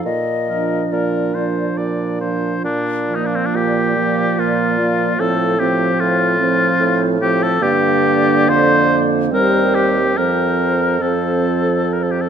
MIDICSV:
0, 0, Header, 1, 6, 480
1, 0, Start_track
1, 0, Key_signature, -2, "major"
1, 0, Tempo, 863309
1, 30, Time_signature, 3, 2, 24, 8
1, 1469, Tempo, 902256
1, 1949, Tempo, 814111
1, 4349, Tempo, 854701
1, 6976, End_track
2, 0, Start_track
2, 0, Title_t, "Flute"
2, 0, Program_c, 0, 73
2, 26, Note_on_c, 0, 75, 47
2, 513, Note_on_c, 0, 74, 34
2, 522, Note_off_c, 0, 75, 0
2, 987, Note_off_c, 0, 74, 0
2, 1711, Note_on_c, 0, 74, 34
2, 2186, Note_off_c, 0, 74, 0
2, 2189, Note_on_c, 0, 74, 38
2, 2666, Note_off_c, 0, 74, 0
2, 2670, Note_on_c, 0, 74, 39
2, 2907, Note_off_c, 0, 74, 0
2, 2911, Note_on_c, 0, 72, 36
2, 3149, Note_off_c, 0, 72, 0
2, 3152, Note_on_c, 0, 72, 42
2, 3619, Note_off_c, 0, 72, 0
2, 3635, Note_on_c, 0, 72, 42
2, 4100, Note_off_c, 0, 72, 0
2, 4108, Note_on_c, 0, 72, 49
2, 4344, Note_off_c, 0, 72, 0
2, 4349, Note_on_c, 0, 74, 60
2, 5188, Note_off_c, 0, 74, 0
2, 5313, Note_on_c, 0, 72, 58
2, 5787, Note_off_c, 0, 72, 0
2, 5792, Note_on_c, 0, 72, 42
2, 6256, Note_off_c, 0, 72, 0
2, 6261, Note_on_c, 0, 72, 48
2, 6976, Note_off_c, 0, 72, 0
2, 6976, End_track
3, 0, Start_track
3, 0, Title_t, "Oboe"
3, 0, Program_c, 1, 68
3, 271, Note_on_c, 1, 70, 26
3, 461, Note_off_c, 1, 70, 0
3, 512, Note_on_c, 1, 70, 36
3, 748, Note_on_c, 1, 72, 33
3, 756, Note_off_c, 1, 70, 0
3, 986, Note_on_c, 1, 74, 40
3, 994, Note_off_c, 1, 72, 0
3, 1225, Note_off_c, 1, 74, 0
3, 1228, Note_on_c, 1, 72, 34
3, 1464, Note_off_c, 1, 72, 0
3, 1471, Note_on_c, 1, 62, 53
3, 1739, Note_on_c, 1, 63, 45
3, 1747, Note_off_c, 1, 62, 0
3, 1798, Note_on_c, 1, 62, 43
3, 1806, Note_off_c, 1, 63, 0
3, 1848, Note_on_c, 1, 60, 46
3, 1856, Note_off_c, 1, 62, 0
3, 1903, Note_on_c, 1, 62, 44
3, 1911, Note_off_c, 1, 60, 0
3, 1957, Note_on_c, 1, 67, 59
3, 1966, Note_off_c, 1, 62, 0
3, 2447, Note_on_c, 1, 65, 54
3, 2456, Note_off_c, 1, 67, 0
3, 2924, Note_on_c, 1, 69, 58
3, 2933, Note_off_c, 1, 65, 0
3, 3158, Note_on_c, 1, 67, 56
3, 3167, Note_off_c, 1, 69, 0
3, 3394, Note_on_c, 1, 65, 70
3, 3403, Note_off_c, 1, 67, 0
3, 4015, Note_off_c, 1, 65, 0
3, 4115, Note_on_c, 1, 67, 65
3, 4240, Note_on_c, 1, 69, 66
3, 4249, Note_off_c, 1, 67, 0
3, 4357, Note_on_c, 1, 67, 77
3, 4365, Note_off_c, 1, 69, 0
3, 4841, Note_on_c, 1, 72, 98
3, 4850, Note_off_c, 1, 67, 0
3, 5151, Note_off_c, 1, 72, 0
3, 5317, Note_on_c, 1, 70, 74
3, 5548, Note_on_c, 1, 67, 61
3, 5556, Note_off_c, 1, 70, 0
3, 5787, Note_on_c, 1, 70, 63
3, 5795, Note_off_c, 1, 67, 0
3, 6262, Note_on_c, 1, 69, 51
3, 6271, Note_off_c, 1, 70, 0
3, 6774, Note_on_c, 1, 70, 35
3, 6782, Note_off_c, 1, 69, 0
3, 6830, Note_on_c, 1, 69, 36
3, 6838, Note_off_c, 1, 70, 0
3, 6875, Note_on_c, 1, 67, 37
3, 6883, Note_off_c, 1, 69, 0
3, 6933, Note_on_c, 1, 69, 39
3, 6942, Note_off_c, 1, 67, 0
3, 6976, Note_off_c, 1, 69, 0
3, 6976, End_track
4, 0, Start_track
4, 0, Title_t, "Clarinet"
4, 0, Program_c, 2, 71
4, 272, Note_on_c, 2, 62, 27
4, 741, Note_off_c, 2, 62, 0
4, 756, Note_on_c, 2, 62, 25
4, 1221, Note_off_c, 2, 62, 0
4, 1232, Note_on_c, 2, 62, 25
4, 1466, Note_off_c, 2, 62, 0
4, 1708, Note_on_c, 2, 58, 38
4, 2191, Note_off_c, 2, 58, 0
4, 2201, Note_on_c, 2, 58, 34
4, 2673, Note_off_c, 2, 58, 0
4, 2686, Note_on_c, 2, 58, 34
4, 2916, Note_off_c, 2, 58, 0
4, 2920, Note_on_c, 2, 60, 35
4, 3154, Note_off_c, 2, 60, 0
4, 3161, Note_on_c, 2, 60, 41
4, 3624, Note_off_c, 2, 60, 0
4, 3626, Note_on_c, 2, 60, 42
4, 4096, Note_off_c, 2, 60, 0
4, 4106, Note_on_c, 2, 60, 45
4, 4341, Note_off_c, 2, 60, 0
4, 4345, Note_on_c, 2, 58, 53
4, 5301, Note_on_c, 2, 60, 53
4, 5310, Note_off_c, 2, 58, 0
4, 5779, Note_off_c, 2, 60, 0
4, 5782, Note_on_c, 2, 60, 46
4, 6249, Note_off_c, 2, 60, 0
4, 6253, Note_on_c, 2, 60, 39
4, 6976, Note_off_c, 2, 60, 0
4, 6976, End_track
5, 0, Start_track
5, 0, Title_t, "French horn"
5, 0, Program_c, 3, 60
5, 271, Note_on_c, 3, 53, 29
5, 741, Note_off_c, 3, 53, 0
5, 745, Note_on_c, 3, 53, 29
5, 1215, Note_off_c, 3, 53, 0
5, 1230, Note_on_c, 3, 53, 27
5, 1465, Note_off_c, 3, 53, 0
5, 1711, Note_on_c, 3, 53, 33
5, 2193, Note_off_c, 3, 53, 0
5, 2200, Note_on_c, 3, 53, 39
5, 2673, Note_off_c, 3, 53, 0
5, 2686, Note_on_c, 3, 53, 35
5, 2919, Note_off_c, 3, 53, 0
5, 2922, Note_on_c, 3, 53, 41
5, 3155, Note_off_c, 3, 53, 0
5, 3160, Note_on_c, 3, 53, 42
5, 3623, Note_off_c, 3, 53, 0
5, 3633, Note_on_c, 3, 53, 41
5, 4099, Note_off_c, 3, 53, 0
5, 4111, Note_on_c, 3, 53, 43
5, 4344, Note_off_c, 3, 53, 0
5, 4347, Note_on_c, 3, 50, 66
5, 5285, Note_off_c, 3, 50, 0
5, 5307, Note_on_c, 3, 55, 54
5, 5690, Note_off_c, 3, 55, 0
5, 5785, Note_on_c, 3, 53, 48
5, 6253, Note_off_c, 3, 53, 0
5, 6261, Note_on_c, 3, 53, 46
5, 6976, Note_off_c, 3, 53, 0
5, 6976, End_track
6, 0, Start_track
6, 0, Title_t, "Bassoon"
6, 0, Program_c, 4, 70
6, 30, Note_on_c, 4, 46, 38
6, 458, Note_off_c, 4, 46, 0
6, 511, Note_on_c, 4, 46, 34
6, 930, Note_off_c, 4, 46, 0
6, 985, Note_on_c, 4, 46, 36
6, 1411, Note_off_c, 4, 46, 0
6, 1468, Note_on_c, 4, 46, 44
6, 1892, Note_off_c, 4, 46, 0
6, 1950, Note_on_c, 4, 46, 44
6, 2387, Note_off_c, 4, 46, 0
6, 2443, Note_on_c, 4, 46, 47
6, 2866, Note_off_c, 4, 46, 0
6, 2920, Note_on_c, 4, 45, 48
6, 3339, Note_off_c, 4, 45, 0
6, 3394, Note_on_c, 4, 45, 46
6, 3813, Note_off_c, 4, 45, 0
6, 3869, Note_on_c, 4, 45, 57
6, 4291, Note_off_c, 4, 45, 0
6, 4348, Note_on_c, 4, 43, 56
6, 4833, Note_on_c, 4, 41, 55
6, 4841, Note_off_c, 4, 43, 0
6, 5310, Note_on_c, 4, 39, 60
6, 5319, Note_off_c, 4, 41, 0
6, 5786, Note_on_c, 4, 41, 50
6, 5795, Note_off_c, 4, 39, 0
6, 6976, Note_off_c, 4, 41, 0
6, 6976, End_track
0, 0, End_of_file